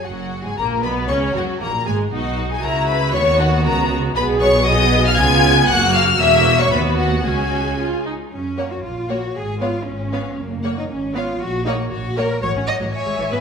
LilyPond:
<<
  \new Staff \with { instrumentName = "Violin section" } { \time 2/4 \key b \major \tempo 4 = 117 fis''8. gis''16 ais''8 b''8 | cis'''8 fis''8 ais''8 gis''8 | fis''8. gis''16 ais''8 b''8 | cis'''8 fis''8 ais''8 r8 |
\key fis \major b''8 cis'''8 dis'''8. eis'''16 | gis'''4 fis'''8 eis'''8 | e'''8. cis'''16 b''8 fis''8 | gis''4. r8 |
r8 fis''16 r8. fis''16 r16 | r8 eis''16 r8. eis''16 r16 | r8 fis''16 r8. eis''16 r16 | r8 fis''16 r8. fis''16 r16 |
\key fis \dorian fis''4 gis''4 | }
  \new Staff \with { instrumentName = "Violin section" } { \time 2/4 \key b \major fis'8. gis'16 ais'8 b'8 | cis''8 fis'8 ais'8 gis'8 | fis'8. gis'16 ais'8 b'8 | cis''8 fis'8 ais'8 r8 |
\key fis \major b'8 cis''8 dis''8. eis''16 | gis''4 fis''8 eis''8 | e''8. cis''16 b'8 fis'8 | gis'4. r8 |
r8 cis''16 r8. cis''16 r16 | r8 cis''16 r8. cis''16 r16 | r8 cis''16 r8. cis''16 r16 | r8 cis''16 r8. cis''16 r16 |
\key fis \dorian cis''4 e''4 | }
  \new Staff \with { instrumentName = "Viola section" } { \time 2/4 \key b \major fis8. gis16 ais8 b8 | cis'8 fis8 ais8 gis8 | <dis' fis'>4 <e' fis'>4 | <b fis'>2 |
\key fis \major <b gis'>4 <b gis'>4 | <b eis'>4 <ais fis'>4 | <ais fis'>4 <b fis'>4 | <cis' fis'>4 eis'8 dis'8 |
r8 ais16 r8. ais16 r16 | r8 b16 r8. b16 r16 | r8 ais16 r8. b16 r16 | r8 ais16 r8. ais16 r16 |
\key fis \dorian fis16 cis'16 r16 fis16 r16 gis16 e16 b16 | }
  \new Staff \with { instrumentName = "Cello section" } { \time 2/4 \key b \major fis,8. gis,16 ais,8 b,8 | cis8 fis,8 ais,8 gis,8 | b,4 cis4 | dis4 cis4 |
\key fis \major b,2 | cis4 fis,4 | e,4 dis,4 | cis,4. r8 |
cis'8. fis'16 eis'8 fis'8 | gis'8 eis'8 cis'4 | ais8. dis'16 cis'8 eis'8 | fis'8 dis'8 fis'8 ais'8 |
\key fis \dorian cis''8 dis''8 cis''8. b'16 | }
  \new Staff \with { instrumentName = "Double bass section" } { \clef bass \time 2/4 \key b \major fis,,8. r16 ais,,8 b,,8 | cis,8 fis,,8 ais,,8 gis,,8 | b,,4 cis,4 | dis,4 cis,4 |
\key fis \major b,,2 | cis,4 fis,,4 | e,,4 dis,4 | cis,4. r8 |
fis,8. r16 ais,,8. r16 | gis,,8. r16 gis,,8. r16 | fis,,8. r16 gis,,8. r16 | ais,,8. r16 ais,,8. r16 |
\key fis \dorian a,,16 a,,16 r16 a,,16 r16 gis,,16 gis,,16 gis,,16 | }
>>